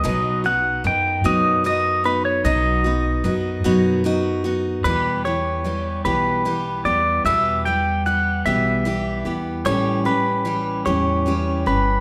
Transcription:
X:1
M:6/8
L:1/16
Q:3/8=50
K:Edor
V:1 name="Pedal steel guitar"
^d2 f2 g2 d2 d2 B c | ^d8 z4 | B2 c4 B4 d2 | e2 g2 f2 e4 z2 |
c2 B4 c4 B2 |]
V:2 name="Steel-string acoustic guitar"
[B,,F,B,^DF]2 [B,DF]2 [F,B,D]2 [B,,F,B,DF]2 [F,B,DF]2 [B,DF]2 | [B,,F,B,^DF]2 [B,DF]2 [F,B,DF]2 [B,,F,B,DF]2 [F,B,DF]2 [B,DF]2 | [E,,B,,E,G,B,G]2 [E,G,B,G]2 [E,G,B,G]2 [E,,B,,E,G,B,G]2 [E,G,B,G]2 [E,G,B,G]2 | [E,,B,,E,G,B,G]2 [E,G,B,G]2 [E,G,B,G]2 [E,,B,,E,G,B,G]2 [E,G,B,G]2 [E,G,B,G]2 |
[A,,E,G,CG]2 [G,CG]2 [E,G,CG]2 [A,,E,G,CG]2 [E,G,CG]2 [G,CG]2 |]
V:3 name="Upright bass" clef=bass
B,,,4 F,,2 F,,6 | B,,,4 F,,2 F,,6 | E,,6 B,,,4 E,,2 | E,,6 B,,,4 E,,2 |
A,,,6 E,,4 G,,,2 |]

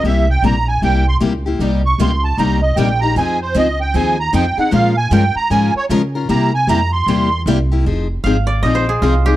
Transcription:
X:1
M:4/4
L:1/8
Q:"Swing" 1/4=154
K:Fm
V:1 name="Accordion"
=e g b a g c' z2 | z d' c' =a b e g b | a c e g a b g _g | f a g b a d z2 |
b a b c'3 z2 | z8 |]
V:2 name="Koto"
z8 | z8 | z8 | z8 |
z8 | z2 f =d (3e c A F G |]
V:3 name="Steel-string acoustic guitar"
[C,G,B,=EG] z [C,G,B,EG] z [C,G,B,EG] z [C,G,B,EG] [B,EG] | [C,G,B,EG] z [C,G,B,EG] z [C,G,B,EG] z [C,G,B,EG] [B,EG] | [F,CEA] z [F,CEA] z [F,CEA] z [F,CEA] [CEA] | [F,A,DFB] z [F,A,DFB] z [F,A,DFB] z [F,A,DFB] [DFB] |
[C,G,B,=EG] z [C,G,B,EG] z [C,G,B,EG] z [C,G,B,EG] [B,EG] | [F,CEA] z [F,CEA] z [F,CEA] z [F,CEA] [CEA] |]
V:4 name="Steel-string acoustic guitar"
z8 | [C,G,B,EG] z [C,G,B,EG] z [C,G,B,EG] z [C,G,B,EG] z | [F,CEA] z [F,CEA] z [F,CEA] z [F,CEA] z | [F,A,DFB] z [F,A,DFB] z [F,A,DFB] z [F,A,DFB] z |
[C,G,B,=EG] z [C,G,B,EG] z [C,G,B,EG] z [C,G,B,EG] z | z8 |]
V:5 name="Upright bass" clef=bass
C,,2 B,,,2 C,,2 D,,2 | C,,2 D,,2 C,,2 B,,,2 | F,,2 D,,2 E,,2 F,, z | B,,2 G,, z A,, z D,2 |
C,2 F,,2 =E,,2 C,,2 | F,,,2 A,,,2 B,,,2 C,,2 |]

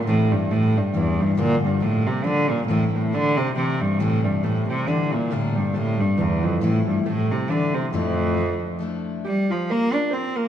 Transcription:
X:1
M:3/4
L:1/8
Q:"Swing" 1/4=137
K:Dm
V:1 name="Steel-string acoustic guitar"
[E,G,CE]2 [E,G,CE] [G,CE] [E,G,CE]2 | [G,,D,F,B,DF]2 [F,B,DF] [F,B,DF] [F,B,DF]2 | [A,,E,A,CE]2 [E,A,CE] [A,CE] [E,A,CE]2 | [C,E,G,CE]2 [E,G,CE] [G,CE] [E,G,CE] [G,CE] |
[B,,D,G,B,D]2 [D,G,B,D] [G,B,D] [D,G,B,D]2 | [A,,E,A,CE]2 [E,A,CE] [A,CE] [E,A,CE] [A,CE] | [D,,A,,F,A,DE]2 [F,A,DE]2 [F,A,DE]2 | z6 |]
V:2 name="Harp"
A, G, A, G, E, G, | B, G, A, C D B, | A, A, D C C G, | A, G, A, C D B, |
A, G, A, G, E, F, | A, G, A,2 D C | F,4 z2 | G F B d c B |]
V:3 name="Cello" clef=bass
A,, G,, A,, G,, E,, G,, | B,, G,, A,, C, D, B,, | A,, A,, D, C, C, G,, | A,, G,, A,, C, D, B,, |
A,, G,, A,, G,, E,, F,, | A,, G,, A,, C, D, C, | F,,4 z2 | G, F, B, D C B, |]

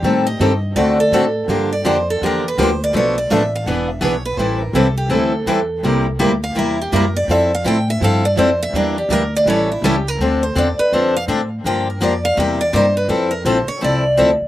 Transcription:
X:1
M:4/4
L:1/16
Q:"Swing" 1/4=165
K:Aphr
V:1 name="Steel-string acoustic guitar"
G2 _e6 d2 A6 | z2 d2 c2 A2 B2 =B2 c2 d2 | _d2 =d2 e2 f2 _g2 e2 _d2 =B2 | c2 B2 A2 G2 A8 |
z6 f2 e2 G2 B2 d2 | e2 f2 g2 e2 f2 d2 c2 e2 | d2 G2 B2 d2 ^c2 E2 G2 B2 | [K:Dm] A2 c2 d2 =B2 c2 f2 z4 |
g2 B2 d2 f2 e2 d2 c2 =B2 | A2 B2 c2 ^c2 d4 z4 |]
V:2 name="Steel-string acoustic guitar"
[_E,G,CGA]2 z2 [E,G,CGA] z3 [D,A,C^FA]2 z2 [D,A,CFA] z3 | [D,F,B,DG]2 z2 [D,F,B,DG] z3 [D,F,B,DG]2 z2 [D,F,B,DG] z3 | [=B,,F,A,DA]2 z2 [B,,F,A,DA] z3 [E,=B,D^G]2 z2 [E,B,DG] z3 | [E,G,CEA]2 z2 [E,G,CEA] z3 [E,G,CEA]2 z2 [E,G,CEA] z3 |
[C,G,B,EG]2 z2 [C,G,B,EG] z3 [C,G,B,EG]2 z2 [C,G,B,EG] z3 | [F,CEA]2 z2 [F,CEA] z3 [F,CEA]2 z2 [F,CEA] z3 | [E,B,DG]2 z2 [E,B,DG] z3 [E,G,^CEA]2 z2 [E,G,CEA] z3 | [K:Dm] [D,F,CDA]2 z2 [D,F,CDA] z3 [D,F,CDA]2 z2 [D,F,CDA] z3 |
[D,F,B,DG]2 z2 [D,F,B,DG] z3 [C,G,B,EG]2 z2 [C,G,B,EG] z3 | [F,CEA]2 z2 [F,CEA] z3 [F,CEA]2 z2 [F,CEA] z3 |]
V:3 name="Steel-string acoustic guitar"
[_E,G,CGA]2 z2 [E,G,CGA] z3 [D,A,C^FA]2 z2 [D,A,CFA] z3 | [D,F,B,DG]2 z2 [D,F,B,DG] z3 [D,F,B,DG]2 z2 [D,F,B,DG] z3 | [=B,,F,A,DA=B]2 z2 [B,,F,A,DAB] z3 [E,=B,D^GB]2 z2 [E,B,DGB] z3 | [E,G,CEA]2 z2 [E,G,CEA] z3 [E,G,CEA]2 z2 [E,G,CEA] z3 |
[C,G,B,EG]2 z2 [C,G,B,EG] z3 [C,G,B,EG]2 z2 [C,G,B,EG] z3 | [F,CEA]2 z2 [F,CEA] z3 [F,CEA]2 z2 [F,CEA] z3 | [E,G,DEB]2 z2 [E,G,DEB] z3 [E,G,^CEA]2 z2 [E,G,CEA] z3 | [K:Dm] z16 |
z16 | z16 |]
V:4 name="Upright bass" clef=bass
A,,4 G,,4 D,,4 A,,4 | G,,4 F,,4 E,,4 D,,4 | =B,,,4 A,,,4 E,,,4 B,,,4 | A,,,4 C,,4 D,,4 E,,4 |
C,,4 D,,4 E,,4 _G,,4 | F,,4 A,,4 G,,4 F,,4 | E,,4 D,,4 A,,,4 ^C,,4 | [K:Dm] D,,4 E,,2 z2 F,,4 A,,4 |
G,,4 F,,4 E,,4 G,,4 | F,,4 B,,,2 z2 C,,4 D,,2 z2 |]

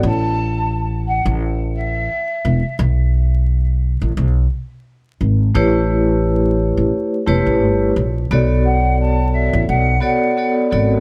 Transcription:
X:1
M:4/4
L:1/16
Q:"Swing 16ths" 1/4=87
K:Amix
V:1 name="Flute"
a4 z2 f z3 e6 | z16 | z16 | z2 f2 a2 e2 f2 f3 z3 |]
V:2 name="Vibraphone"
z16 | z16 | [A,EGBc]8- [A,EGBc]2 [A,EGBc]4 z2 | [B,FAcd]8- [B,FAcd]2 [B,FAcd]2 [B,FAcd]2 [B,FAcd]2 |]
V:3 name="Upright bass" clef=bass
A,,,6- A,,, A,,,4- A,,, z2 E,,, z | B,,,6- B,,, A,,, B,,,2 z4 ^G,,,2 | A,,,6- A,,, A,,, z2 E,,, A,,, G,,,2 ^A,,,2 | B,,,6- B,,, A,,, B,,,2 z4 ^G,,,2 |]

